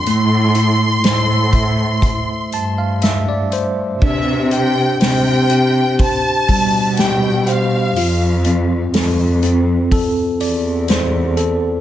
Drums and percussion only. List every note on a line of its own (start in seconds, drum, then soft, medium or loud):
0.06 closed hi-hat medium
0.55 closed hi-hat medium
1.04 snare loud
1.04 closed hi-hat medium
1.53 kick medium
1.53 closed hi-hat medium
2.02 kick medium
2.02 closed hi-hat loud
2.52 closed hi-hat medium
3.02 snare loud
3.02 closed hi-hat medium
3.52 closed hi-hat medium
4.02 kick loud
4.02 crash medium
4.51 hi-hat pedal medium
4.51 open hi-hat medium
5.01 snare loud
5.01 hi-hat pedal medium
5.01 open hi-hat medium
5.50 hi-hat pedal medium
5.50 open hi-hat medium
5.99 kick medium
5.99 hi-hat pedal medium
5.99 open hi-hat loud
6.48 kick medium
6.48 hi-hat pedal medium
6.48 open hi-hat medium
6.97 snare loud
6.97 hi-hat pedal medium
6.97 open hi-hat loud
7.47 hi-hat pedal medium
7.47 open hi-hat medium
7.96 hi-hat pedal medium
7.96 open hi-hat medium
8.45 hi-hat pedal medium
8.45 open hi-hat medium
8.94 snare loud
8.94 hi-hat pedal medium
8.94 open hi-hat medium
9.43 hi-hat pedal medium
9.43 open hi-hat medium
9.91 kick medium
9.91 hi-hat pedal medium
9.91 open hi-hat medium
10.40 hi-hat pedal medium
10.40 open hi-hat medium
10.88 snare loud
10.88 hi-hat pedal medium
10.88 open hi-hat medium
11.37 hi-hat pedal medium
11.37 open hi-hat medium